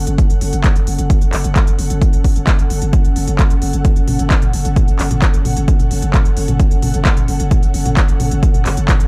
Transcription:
0.00 9.08 C#4 medium
0.00 9.08 A4 medium
0.00 9.08 F#5 medium
0.07 0.18 F#1 medium
0.07 closed hi-hat medium
0.18 kick loud
0.18 closed hi-hat medium
0.30 0.41 F#1 medium
0.30 closed hi-hat medium
0.41 0.52 F#1 loud
0.41 open hi-hat loud
0.53 0.64 F#1 medium
0.53 closed hi-hat medium
0.64 kick loud
0.64 clap loud
0.64 closed hi-hat medium
0.76 0.86 F#1 medium
0.76 closed hi-hat medium
0.87 0.98 F#1 loud
0.87 open hi-hat loud
0.99 1.10 F#1 medium
0.99 closed hi-hat medium
1.10 kick loud
1.10 closed hi-hat medium
1.21 1.32 F#1 medium
1.21 closed hi-hat medium
1.33 1.44 F#1 loud
1.33 clap medium
1.33 open hi-hat loud
1.44 1.56 F#1 medium
1.44 closed hi-hat medium
1.56 kick loud
1.56 clap loud
1.56 closed hi-hat medium
1.67 1.78 F#1 medium
1.67 closed hi-hat medium
1.79 1.90 F#1 loud
1.79 open hi-hat loud
1.90 2.01 F#1 medium
1.90 closed hi-hat medium
2.02 kick loud
2.02 closed hi-hat medium
2.13 2.24 F#1 medium
2.13 closed hi-hat medium
2.24 2.35 F#1 loud
2.24 kick medium
2.24 open hi-hat loud
2.36 2.47 F#1 medium
2.36 closed hi-hat medium
2.47 kick loud
2.47 clap loud
2.47 closed hi-hat medium
2.59 2.70 F#1 medium
2.59 closed hi-hat medium
2.70 2.81 F#1 loud
2.70 open hi-hat loud
2.82 2.93 F#1 medium
2.82 closed hi-hat soft
2.93 kick loud
2.93 closed hi-hat medium
3.05 3.15 F#1 medium
3.05 closed hi-hat soft
3.16 3.27 F#1 loud
3.16 open hi-hat loud
3.28 3.39 F#1 medium
3.28 closed hi-hat medium
3.39 kick loud
3.39 clap loud
3.39 closed hi-hat medium
3.50 3.61 F#1 medium
3.50 closed hi-hat medium
3.62 3.73 F#1 loud
3.62 open hi-hat loud
3.73 3.85 F#1 medium
3.73 closed hi-hat soft
3.85 kick loud
3.85 closed hi-hat medium
3.96 4.07 F#1 medium
3.96 closed hi-hat soft
4.08 4.19 F#1 loud
4.08 open hi-hat loud
4.08 mid tom medium
4.19 4.30 F#1 medium
4.19 closed hi-hat medium
4.31 kick loud
4.31 clap loud
4.31 closed hi-hat medium
4.42 4.53 F#1 medium
4.42 closed hi-hat soft
4.42 mid tom medium
4.53 4.64 F#1 medium
4.53 open hi-hat loud
4.65 4.76 F#1 medium
4.65 closed hi-hat medium
4.76 kick loud
4.76 closed hi-hat medium
4.76 mid tom medium
4.88 4.99 F#1 medium
4.88 closed hi-hat soft
4.99 5.10 F#1 loud
4.99 clap medium
4.99 open hi-hat loud
5.11 5.22 F#1 medium
5.11 closed hi-hat medium
5.11 mid tom medium
5.22 kick loud
5.22 clap loud
5.22 closed hi-hat medium
5.34 5.44 F#1 medium
5.34 closed hi-hat medium
5.45 5.56 F#1 loud
5.45 open hi-hat loud
5.45 mid tom medium
5.57 5.68 F#1 medium
5.57 closed hi-hat medium
5.68 kick loud
5.68 closed hi-hat medium
5.79 5.90 F#1 medium
5.79 closed hi-hat soft
5.79 mid tom medium
5.91 6.02 F#1 loud
5.91 open hi-hat loud
6.02 6.14 F#1 medium
6.02 closed hi-hat medium
6.14 kick loud
6.14 clap loud
6.14 closed hi-hat medium
6.14 mid tom medium
6.25 6.36 F#1 medium
6.25 closed hi-hat soft
6.37 6.48 F#1 medium
6.37 open hi-hat loud
6.48 6.59 F#1 medium
6.48 closed hi-hat medium
6.48 mid tom medium
6.60 kick loud
6.60 closed hi-hat medium
6.71 6.82 F#1 medium
6.71 closed hi-hat soft
6.82 6.93 F#1 loud
6.82 open hi-hat loud
6.82 mid tom medium
6.94 7.05 F#1 medium
6.94 closed hi-hat medium
7.05 kick loud
7.05 clap loud
7.05 closed hi-hat medium
7.17 7.28 F#1 medium
7.17 closed hi-hat medium
7.17 mid tom medium
7.28 7.39 F#1 loud
7.28 open hi-hat loud
7.40 7.51 F#1 medium
7.40 closed hi-hat soft
7.51 kick loud
7.51 closed hi-hat medium
7.51 mid tom medium
7.63 7.74 F#1 medium
7.63 closed hi-hat medium
7.74 7.85 F#1 loud
7.74 open hi-hat loud
7.86 7.97 F#1 medium
7.86 closed hi-hat medium
7.86 mid tom medium
7.97 kick loud
7.97 clap loud
7.97 closed hi-hat medium
8.08 8.19 F#1 medium
8.08 closed hi-hat soft
8.20 8.31 F#1 loud
8.20 open hi-hat loud
8.20 mid tom medium
8.31 8.43 F#1 medium
8.31 closed hi-hat medium
8.43 kick loud
8.43 closed hi-hat medium
8.54 8.65 F#1 medium
8.54 closed hi-hat medium
8.54 mid tom medium
8.66 8.77 F#1 loud
8.66 clap medium
8.66 open hi-hat loud
8.77 8.88 F#1 medium
8.77 closed hi-hat medium
8.89 kick loud
8.89 clap loud
8.89 closed hi-hat medium
8.89 mid tom medium
9.00 9.08 F#1 medium
9.00 closed hi-hat medium

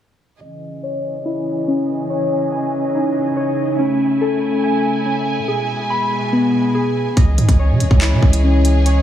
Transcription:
0.41 5.44 C#3 medium
0.41 3.75 E3 medium
0.41 3.75 G#4 medium
0.41 3.75 D#5 medium
0.41 2.94 D#5 medium
0.83 2.09 C#5 medium
1.25 3.79 E4 loud
1.68 3.78 C#4 medium
2.10 3.35 C#5 medium
2.52 3.79 G#5 medium
2.95 3.79 D#4 medium
3.37 3.79 C#5 medium
3.79 5.46 A3 medium
3.79 5.04 C#4 medium
3.79 7.14 E4 medium
3.79 7.14 G#5 medium
4.21 5.48 A4 medium
4.63 5.48 G#5 medium
5.06 5.48 C#4 medium
5.48 7.15 B2 medium
5.48 7.15 G#3 medium
5.48 6.74 G#4 medium
5.90 7.17 B5 loud
6.32 7.17 B3 loud
6.75 7.17 G#4 medium
7.17 7.37 C#2 loud
7.17 9.02 E3 medium
7.17 9.02 G#3 medium
7.17 9.02 C#4 medium
7.17 9.02 G#4 medium
7.17 9.02 D#5 loud
7.17 kick loud
7.17 closed hi-hat medium
7.38 7.48 G#2 loud
7.38 closed hi-hat medium
7.49 7.71 C#2 loud
7.49 kick loud
7.49 closed hi-hat medium
7.59 8.85 C#5 medium
7.70 7.82 C#3 loud
7.80 7.90 C#2 loud
7.80 closed hi-hat medium
7.91 8.13 C#2 loud
7.91 kick loud
8.01 9.02 E4 loud
8.01 clap loud
8.01 closed hi-hat medium
8.12 8.22 C#3 loud
8.23 9.02 C#2 loud
8.23 kick medium
8.33 closed hi-hat medium
8.44 9.02 C#4 medium
8.65 closed hi-hat medium
8.86 9.02 C#5 loud
8.86 closed hi-hat medium

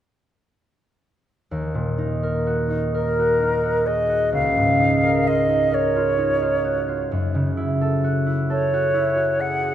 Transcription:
1.51 4.38 D#2 soft
1.75 4.37 A#2 soft
1.98 2.69 D#4 soft
2.23 2.93 A#4 soft
2.47 3.18 F#4 soft
2.70 3.41 D#4 soft
2.94 3.88 A#4 soft
2.94 5.02 A#4 soft
3.19 3.62 F#4 soft
3.42 4.79 D#4 soft
3.63 4.08 F#4 soft
3.86 4.26 G#4 soft
3.86 4.33 D#5 soft
4.09 4.37 F#4 soft
4.33 7.15 C#2 soft
4.33 5.29 F5 medium
4.57 7.15 G#2 soft
4.80 5.48 D#4 soft
5.04 5.71 A#4 soft
5.27 5.95 F4 soft
5.27 5.76 D#5 soft
5.50 6.17 D#4 soft
5.72 7.14 A#4 soft
5.72 7.12 C#5 soft
5.96 6.41 F4 soft
6.19 7.15 D#4 soft
6.42 6.87 F4 soft
6.64 7.04 F#4 soft
6.88 7.15 F4 soft
7.11 9.74 F#2 soft
7.35 9.74 C#3 soft
7.57 8.25 E4 soft
7.81 8.49 A4 soft
8.04 8.72 F#4 soft
8.26 8.93 E4 soft
8.50 9.74 A4 soft
8.50 9.42 C#5 soft
8.73 9.15 F#4 soft
8.94 9.74 E4 soft
9.17 9.62 F#4 soft
9.39 9.74 G#4 soft
9.39 9.74 F#5 medium
9.63 9.74 F#4 soft

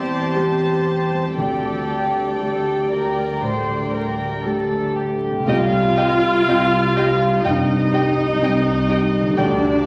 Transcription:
0.00 1.33 E2 soft
0.00 0.96 E3 soft
0.00 1.41 E3 soft
0.00 0.35 G3 soft
0.00 1.11 G3 soft
0.00 0.35 C4 soft
0.00 0.86 C4 soft
0.00 0.36 G4 soft
0.00 1.33 G4 soft
0.00 0.35 C5 soft
0.00 1.32 C5 soft
0.00 0.35 D5 soft
0.00 1.37 A5 medium
0.10 0.60 G4 soft
0.35 1.33 G3 soft
0.35 1.33 C4 soft
0.35 1.33 G4 soft
0.35 1.37 C5 soft
0.35 1.42 C5 soft
0.61 2.13 G4 soft
0.87 1.42 C4 soft
1.12 1.62 G3 soft
1.37 5.23 D2 soft
1.37 2.36 D2 soft
1.37 3.40 D3 soft
1.37 2.24 G4 soft
1.37 2.25 A4 soft
1.37 4.93 D5 soft
1.37 4.41 G5 soft
1.64 3.14 G3 soft
2.14 2.63 G4 soft
2.38 3.38 G3 soft
2.38 3.38 G4 soft
2.38 2.86 A4 soft
2.38 5.51 A5 soft
2.64 4.17 G4 soft
2.90 3.42 A#4 soft
3.15 3.92 G3 soft
3.42 5.07 A2 soft
3.42 5.51 D3 soft
3.42 3.93 C5 soft
3.92 5.21 G3 soft
3.92 4.44 A#4 soft
4.18 4.69 G4 soft
4.44 5.44 G3 soft
4.44 5.44 A3 soft
4.44 5.44 G4 soft
4.44 4.96 A4 soft
4.44 5.51 A4 soft
4.70 5.42 G4 soft
4.95 5.51 A3 soft
4.95 5.47 G4 soft
5.22 5.33 G3 soft
5.29 9.19 C3 soft
5.34 9.24 G3 soft
5.39 9.29 C4 soft
5.43 9.32 G4 soft
5.47 6.36 C2 medium
5.47 7.41 C2 soft
5.47 6.36 C2 medium
5.47 7.41 F4 loud
5.47 5.56 D#5 medium
5.47 7.41 F5 medium
5.47 5.56 G5 soft
5.97 6.77 G4 soft
5.97 6.05 D#5 soft
5.97 6.05 G5 soft
6.47 7.34 C2 medium
6.47 7.26 C4 soft
6.47 6.56 D#5 soft
6.47 6.56 G5 soft
6.96 7.74 G4 soft
6.96 7.04 D#5 soft
6.96 7.04 G5 soft
7.45 8.30 C2 medium
7.45 8.22 G2 soft
7.45 9.38 D#4 medium
7.45 7.53 D#5 soft
7.45 9.38 D#5 medium
7.45 7.53 G5 soft
7.93 8.70 G4 soft
7.93 8.01 D#5 soft
7.93 8.02 G5 soft
8.41 9.26 C2 medium
8.41 9.27 C2 medium
8.41 9.18 C4 soft
8.41 8.50 D#5 soft
8.41 8.50 G5 soft
8.90 9.38 G4 soft
8.90 8.98 D#5 soft
8.90 8.98 G5 soft
9.20 9.86 D3 soft
9.25 9.86 G3 soft
9.29 9.86 A3 soft
9.34 9.86 D2 medium
9.34 9.86 D4 medium
9.34 9.86 G4 soft
9.34 9.45 D5 soft
9.34 9.45 G5 medium
9.38 9.86 D2 soft
9.38 9.86 D2 medium
9.38 9.86 D5 medium

